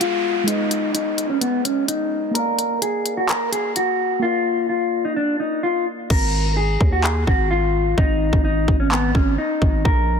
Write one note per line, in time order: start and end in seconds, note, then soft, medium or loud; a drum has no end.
0.00 0.42 G#3 medium
0.00 0.45 B3 medium
0.00 0.45 F4 medium
0.00 0.43 G#4 medium
0.00 0.46 D#5 medium
0.00 closed hi-hat medium
0.00 downlifter medium
0.44 2.29 G#3 medium
0.44 0.92 D#4 loud
0.44 2.31 G#4 medium
0.48 2.32 B4 medium
0.48 2.33 D#5 medium
0.48 closed hi-hat medium
0.71 closed hi-hat medium
0.94 1.27 D#4 medium
0.94 closed hi-hat medium
1.18 closed hi-hat medium
1.30 1.40 C#4 medium
1.41 1.62 B3 loud
1.41 closed hi-hat medium
1.65 1.86 C#4 medium
1.65 closed hi-hat medium
1.88 2.32 D#4 medium
1.88 closed hi-hat medium
2.31 4.17 A#3 medium
2.31 4.18 A#4 medium
2.31 2.79 A#4 medium
2.35 4.20 D5 medium
2.35 4.21 F5 medium
2.35 closed hi-hat medium
2.59 closed hi-hat medium
2.82 3.15 G#4 medium
2.82 closed hi-hat medium
3.06 closed hi-hat medium
3.17 3.28 F#4 medium
3.29 3.50 A#4 medium
3.29 clap loud
3.29 closed hi-hat medium
3.52 3.73 G#4 medium
3.52 closed hi-hat medium
3.76 4.20 F#4 medium
3.76 closed hi-hat medium
4.19 6.05 A#3 medium
4.19 4.67 F4 loud
4.19 6.06 A#4 medium
4.25 6.07 D5 medium
4.25 6.09 F5 medium
4.69 5.02 F4 medium
5.05 5.15 D#4 medium
5.16 5.37 D4 medium
5.40 5.61 D#4 medium
5.63 5.84 F4 medium
6.10 6.78 G#1 loud
6.10 6.54 A#4 medium
6.10 kick loud
6.10 crash medium
6.57 6.90 G#4 medium
6.81 7.26 D#2 loud
6.81 kick loud
6.92 7.03 F#4 medium
7.04 7.25 G#4 medium
7.04 clap loud
7.27 7.95 G#1 loud
7.27 7.48 F#4 medium
7.27 kick medium
7.51 7.95 F4 medium
7.97 8.31 G#1 loud
7.97 8.42 D#4 loud
7.97 kick loud
8.33 8.67 G#1 loud
8.33 kick medium
8.45 8.78 D#4 loud
8.68 9.13 G#1 loud
8.68 kick medium
8.80 8.90 C#4 medium
8.91 9.12 B3 loud
8.91 clap loud
9.15 9.37 G#1 loud
9.15 9.36 C#4 medium
9.15 kick medium
9.38 9.82 D#4 medium
9.62 9.84 G#1 loud
9.62 kick loud
9.85 10.20 A#1 loud
9.85 10.20 A#4 medium
9.85 kick loud